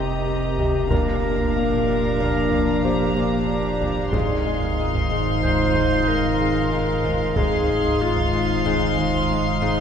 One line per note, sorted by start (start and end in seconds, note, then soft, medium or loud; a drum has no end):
0.00 4.09 F1 medium
0.00 0.86 C2 medium
0.00 0.27 C3 medium
0.00 0.87 C3 medium
0.00 0.94 C4 soft
0.00 0.87 G4 medium
0.00 0.90 G4 medium
0.00 4.09 A#4 medium
0.00 0.87 D#5 medium
0.00 4.10 A#5 medium
0.00 0.22 D6 soft
0.28 0.58 C3 soft
0.58 0.94 C3 soft
0.58 taiko medium
0.90 4.09 A#1 medium
0.90 1.87 A#2 medium
0.90 4.10 A#2 medium
0.90 4.10 D4 medium
0.90 4.12 F4 medium
0.90 2.80 A#4 medium
0.90 4.14 D5 medium
0.90 4.09 F5 soft
0.90 taiko medium
1.24 1.55 A#3 soft
1.39 taiko medium
1.56 2.83 A#3 soft
1.71 taiko medium
1.88 2.19 A#2 soft
2.19 2.51 A#2 medium
2.19 taiko medium
2.51 3.15 A#2 soft
2.51 taiko medium
2.84 4.16 A#3 soft
2.84 3.14 G4 medium
2.84 4.74 C5 soft
3.15 3.48 A#2 medium
3.15 4.14 G4 medium
3.49 3.80 A#2 soft
3.81 4.16 A#2 soft
3.81 taiko medium
4.12 7.32 F1 medium
4.12 7.32 G#1 medium
4.12 7.32 G#2 medium
4.12 5.10 G#2 medium
4.12 7.35 D#4 medium
4.12 7.32 F4 medium
4.12 5.14 G#4 medium
4.12 7.36 C5 medium
4.12 7.36 D#5 medium
4.12 7.32 F5 medium
4.12 7.35 C6 medium
4.12 taiko loud
4.46 4.78 G#3 soft
4.61 taiko medium
4.79 6.07 G#3 medium
4.93 taiko medium
5.11 5.42 G#2 soft
5.42 5.74 G#2 medium
5.42 6.10 C5 medium
5.42 taiko medium
5.74 6.38 G#2 medium
5.74 taiko medium
6.08 7.68 G#3 medium
6.08 7.38 A#4 medium
6.40 6.71 G#2 medium
6.72 7.03 G#2 medium
7.04 7.35 G#2 medium
7.04 taiko medium
7.35 9.80 F1 medium
7.35 9.80 G#1 medium
7.35 9.80 G#2 medium
7.35 8.32 G#2 medium
7.35 9.80 D#4 medium
7.35 9.80 F4 medium
7.35 8.03 G#4 medium
7.35 9.80 C5 medium
7.35 9.80 D#5 medium
7.35 9.80 F5 medium
7.35 9.80 C6 medium
7.35 taiko medium
7.69 8.00 G#3 soft
7.84 taiko medium
8.01 9.29 G#3 medium
8.01 9.30 F4 medium
8.17 taiko medium
8.33 8.64 G#2 medium
8.65 8.97 G#2 medium
8.65 taiko medium
8.97 9.60 G#2 medium
8.97 taiko medium
9.30 9.80 G#3 medium
9.62 9.80 G#2 medium